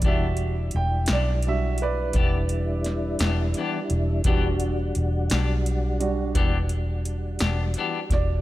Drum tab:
HH |xxxxxxxxxxxx|xxxxxxxxxxxx|
SD |---o----oo--|---o-----o-o|
BD |o-----o-----|o-----o----o|